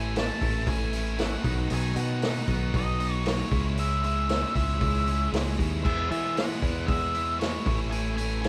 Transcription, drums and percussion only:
0.16 snare, open hi-hat
0.42 kick, open hi-hat
0.67 kick, open hi-hat
0.93 open hi-hat
1.19 snare, open hi-hat
1.44 kick, open hi-hat
1.70 open hi-hat
1.96 open hi-hat
2.22 snare, open hi-hat
2.47 kick, open hi-hat
2.74 kick, open hi-hat
3.00 open hi-hat
3.26 snare, open hi-hat
3.52 kick, open hi-hat
3.77 open hi-hat
4.04 open hi-hat
4.29 snare, open hi-hat
4.55 kick, open hi-hat
4.81 kick, open hi-hat
5.07 open hi-hat
5.34 snare, open hi-hat
5.59 kick, open hi-hat
5.85 kick, crash
6.11 open hi-hat
6.37 snare, open hi-hat
6.62 kick, open hi-hat
6.88 kick, open hi-hat
7.15 open hi-hat
7.41 snare, open hi-hat
7.66 kick, open hi-hat
7.92 open hi-hat
8.18 open hi-hat
8.44 snare, open hi-hat

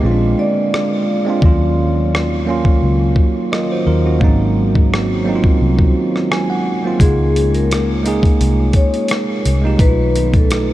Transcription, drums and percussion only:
0.74 cross-stick
1.42 kick
2.15 cross-stick
2.65 kick
3.16 kick
3.53 cross-stick
4.21 kick
4.75 kick
4.94 cross-stick
5.44 kick
5.79 kick
6.16 cross-stick
6.32 cross-stick
7.00 kick, closed hi-hat
7.36 closed hi-hat
7.54 closed hi-hat
7.71 cross-stick, closed hi-hat
8.06 closed hi-hat
8.23 kick, closed hi-hat
8.41 closed hi-hat
8.73 kick, closed hi-hat
8.94 closed hi-hat
9.08 cross-stick, closed hi-hat
9.45 closed hi-hat
9.79 kick, closed hi-hat
10.16 closed hi-hat
10.34 kick, closed hi-hat
10.51 cross-stick, closed hi-hat

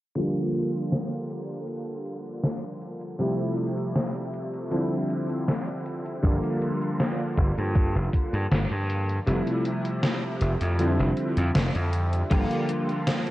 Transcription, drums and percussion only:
0.16 closed hi-hat
0.36 closed hi-hat
0.54 closed hi-hat
0.74 closed hi-hat
0.92 snare, closed hi-hat
1.30 closed hi-hat
1.50 closed hi-hat
1.68 closed hi-hat
2.06 closed hi-hat
2.25 closed hi-hat
2.44 snare, closed hi-hat
2.81 closed hi-hat
3.01 closed hi-hat
3.20 closed hi-hat
3.39 closed hi-hat
3.57 closed hi-hat
3.78 closed hi-hat
3.96 snare, closed hi-hat
4.34 closed hi-hat
4.54 closed hi-hat
4.72 closed hi-hat
5.10 closed hi-hat
5.30 closed hi-hat
5.48 snare, closed hi-hat
5.86 closed hi-hat
6.06 closed hi-hat
6.24 kick, closed hi-hat
6.44 closed hi-hat
6.62 closed hi-hat
6.82 closed hi-hat
7.00 snare, closed hi-hat
7.38 kick, closed hi-hat
7.58 closed hi-hat
7.75 kick, closed hi-hat
8.13 kick, closed hi-hat
8.34 closed hi-hat
8.52 snare, closed hi-hat
8.90 closed hi-hat
9.09 closed hi-hat
9.27 closed hi-hat
9.47 closed hi-hat
9.65 closed hi-hat
9.85 closed hi-hat
10.03 snare, closed hi-hat
10.41 closed hi-hat
10.61 closed hi-hat
10.79 closed hi-hat
11.17 closed hi-hat
11.37 closed hi-hat
11.55 snare, closed hi-hat
11.75 closed hi-hat
11.93 closed hi-hat
12.13 closed hi-hat
12.31 kick, closed hi-hat, crash
12.51 closed hi-hat
12.69 closed hi-hat
12.89 closed hi-hat
13.07 snare, closed hi-hat
13.27 closed hi-hat

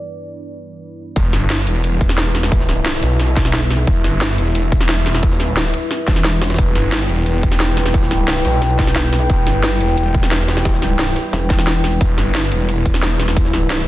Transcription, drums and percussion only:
1.16 kick, closed hi-hat, ride
1.33 snare, closed hi-hat, ride
1.50 snare, closed hi-hat, ride
1.59 snare
1.67 closed hi-hat, ride
1.75 ride
1.84 closed hi-hat, ride
2.01 kick, closed hi-hat, ride
2.09 snare
2.18 snare, closed hi-hat, ride
2.26 ride
2.35 snare, closed hi-hat, ride
2.43 snare
2.52 kick, closed hi-hat, ride
2.60 snare
2.69 snare, closed hi-hat, ride
2.86 snare, closed hi-hat, ride
2.94 snare
3.03 snare, closed hi-hat, ride
3.20 snare, closed hi-hat, ride
3.28 ride
3.37 kick, snare, closed hi-hat, ride
3.45 snare
3.53 snare, closed hi-hat, ride
3.70 snare, closed hi-hat, ride
3.79 ride
3.87 kick, closed hi-hat, ride
4.04 snare, closed hi-hat, ride
4.21 snare, closed hi-hat, ride
4.30 snare
4.38 closed hi-hat, ride
4.47 ride
4.55 closed hi-hat, ride
4.72 kick, closed hi-hat, ride
4.81 snare
4.89 snare, closed hi-hat, ride
4.98 ride
5.06 snare, closed hi-hat, ride
5.14 snare
5.23 kick, closed hi-hat, ride
5.31 snare
5.40 snare, closed hi-hat, ride
5.57 snare, closed hi-hat, ride
5.65 snare
5.74 closed hi-hat, ride
5.91 snare, closed hi-hat, ride
6.08 kick, snare, closed hi-hat, ride
6.16 snare, ride
6.25 snare, closed hi-hat, ride
6.42 snare, closed hi-hat, ride
6.50 snare, ride
6.54 snare, ride
6.58 kick, closed hi-hat, ride
6.75 snare, closed hi-hat, ride
6.92 snare, closed hi-hat, ride
7.01 snare
7.09 closed hi-hat, ride
7.18 ride
7.26 closed hi-hat, ride
7.43 kick, closed hi-hat, ride
7.52 snare
7.60 snare, closed hi-hat, ride
7.69 ride
7.77 snare, closed hi-hat, ride
7.86 snare
7.94 kick, closed hi-hat, ride
8.03 snare
8.11 snare, closed hi-hat, ride
8.28 snare, closed hi-hat, ride
8.37 snare
8.45 snare, closed hi-hat, ride
8.62 snare, closed hi-hat, ride
8.70 ride
8.79 kick, snare, closed hi-hat, ride
8.87 snare
8.96 snare, closed hi-hat, ride
9.13 snare, closed hi-hat, ride
9.21 ride
9.30 kick, closed hi-hat, ride
9.47 snare, closed hi-hat, ride
9.64 snare, closed hi-hat, ride
9.72 snare
9.81 closed hi-hat, ride
9.89 ride
9.98 closed hi-hat, ride
10.14 kick, closed hi-hat, ride
10.23 snare
10.31 snare, closed hi-hat, ride
10.40 ride
10.48 snare, closed hi-hat, ride
10.57 snare, ride
10.65 kick, snare, closed hi-hat, ride
10.74 snare
10.82 snare, closed hi-hat, ride
10.99 snare, closed hi-hat, ride
11.08 snare
11.16 snare, closed hi-hat, ride
11.33 snare, closed hi-hat, ride
11.50 kick, snare, closed hi-hat, ride
11.59 snare
11.67 snare, closed hi-hat, ride
11.84 snare, closed hi-hat, ride
11.92 ride
12.01 kick, closed hi-hat, ride
12.18 snare, closed hi-hat, ride
12.35 snare, closed hi-hat, ride
12.43 snare
12.52 closed hi-hat, ride
12.60 ride
12.69 closed hi-hat, ride
12.86 kick, closed hi-hat, ride
12.94 snare
13.03 snare, closed hi-hat, ride
13.11 ride
13.20 snare, closed hi-hat, ride
13.28 snare
13.37 kick, closed hi-hat, ride
13.45 snare
13.54 snare, closed hi-hat, ride
13.70 snare, closed hi-hat, ride
13.79 snare

